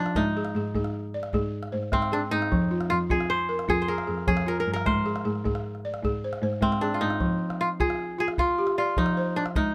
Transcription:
Already playing: D4 F4 G#4
0.06 calabash click
0.15 G#2 G#3 D#4, calabash thump
0.37 G#4
0.45 calabash click
0.55 G#2 G#4, calabash click
0.75 G#2 G#4, calabash thump
0.84 calabash click
0.94 calabash click
1.14 D5
1.23 calabash click
1.33 G#2 G#4, calabash thump
1.63 calabash click
1.72 G#2 C5
1.83 calabash click
1.92 G#2 G#3 C4, calabash thump
2.02 calabash click
2.12 D4 G#4
2.31 G#2 D#4
2.42 calabash click
2.52 F2 F3, calabash thump
2.71 F4
2.81 calabash click
2.90 F2 F4, calabash click
3.10 F2 F4 G#4, calabash thump
3.20 calabash click
3.30 C5, calabash click
3.49 A#4
3.59 calabash click
3.68 F2 F4 G#4, calabash thump
3.82 C5
3.88 G#4 A#4
3.98 calabash click
4.07 F2 G#4
4.18 calabash click
4.27 F2 F3 G#4, calabash thump
4.37 calabash click
4.47 F4 A#4
4.60 A#4
4.67 G2
4.73 A#4, calabash click
4.86 G#2 G#3 C5, calabash thump
5.06 G#4, calabash click
5.16 calabash click
5.25 G#2 G#4
5.35 calabash click
5.45 G#2 G#4, calabash thump
5.55 calabash click
5.75 calabash click
5.85 D5
5.94 calabash click
6.03 G#2 G#4, calabash thump
6.24 C5
6.33 calabash click
6.42 G#2 C5
6.53 calabash click
6.61 G#2 G#3 C4, calabash thump
6.72 calabash click
6.81 D4 G#4
6.94 F4
7.01 G#2 D#4, calabash click
7.10 calabash click
7.20 F3, calabash thump
7.50 calabash click
7.60 F4, calabash click
7.80 F4 G#4, calabash thump
7.90 calabash click
7.99 calabash click
8.19 F4 G#4
8.28 calabash click
8.38 F4, calabash thump
8.58 G4
8.67 calabash click
8.78 F4 D5
8.86 calabash click
8.97 F3 D#4, calabash thump
9.06 calabash click
9.17 C5
9.36 D4
9.46 calabash click
9.55 G#3 D#4, calabash thump

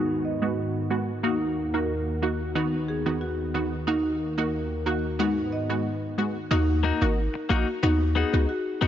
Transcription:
Already playing: G#2 D#3 G#3 B3 F#4
0.25 D#5
0.42 G#3 B3 F#4
0.90 G#3 B3 F#4
1.23 D#2 A#3 D#4 F#4
1.74 A#3 D#4 F#4 A#4
2.22 A#3 D#4 F#4
2.55 D#3 B3 D#4 F#4
2.88 G#4
3.06 D#3 B3 D#4 F#4
3.21 F#4
3.54 D#3 B3 D#4 F#4
3.87 D#2 D#3 A#3 D#4 F#4
4.38 A#3 D#4 F#4 A#4
4.86 A#3 D#4 F#4
5.19 G#2 G#3 B3 D#4 F#4
5.52 D#5
5.69 G#3 B3 F#4
6.18 G#3 B3 F#4
6.51 D#2 A#3 D#4 F#4
6.83 A#3 D#4 F#4
7.01 G#1 A#3 D#4 F#4 A#4
7.34 muted clean electric guitar stroke
7.49 A#1 A#3 D#4 F#4
7.83 D#2 B3 D#4 F#4
8.15 B3 D#4 F#4 G#4
8.33 C#2 B3 D#4 F#4
8.49 F#4
8.81 C#2 B3 D#4 F#4

